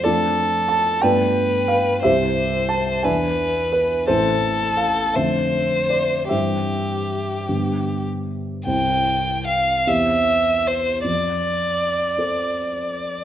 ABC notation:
X:1
M:6/8
L:1/16
Q:3/8=54
K:C
V:1 name="Violin"
A6 B6 | c6 B6 | A6 c6 | G8- G z3 |
g4 f2 e4 c2 | d12 |]
V:2 name="Grand piano"
[FAd]4 a2 [Bdg]4 f2 | [Gce]4 a2 [de^g]4 B2 | [EAc]4 f2 e4 d2 | [Gce]8- [Gce]2 z2 |
[C,,CEc]6 [E,,CGc]6 | F,,6 [CAd]6 |]
V:3 name="Grand piano" clef=bass
[F,,A,CD]6 [G,,A,B,F]6 | [C,,G,CE]6 [E,,E,B,D]6 | [A,,,E,A,C]6 [F,,D,A,C]6 | [G,,E,G,C]6 [G,,D,G,B,]6 |
z12 | z12 |]